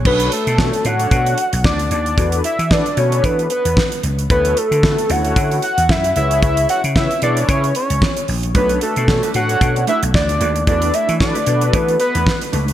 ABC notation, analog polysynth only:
X:1
M:4/4
L:1/16
Q:"Swing 16ths" 1/4=113
K:Bdor
V:1 name="Analog polysynth"
[DFAc]2 z2 [DFAc] z [DFAc]4 z6 | [DFAB]2 z2 [DFAB] z [DFAB]4 z6 | [EFAc]2 z2 [EFAB] z [EFAc]4 z4 [EGBc]2- | [EGBc]2 z2 [EGBc] z [EGBc]4 z6 |
[DFAc]2 z2 [DFAc] z [DFAc]4 z6 | [DFAB]2 z2 [DFAB] z [DFAB]4 z6 |]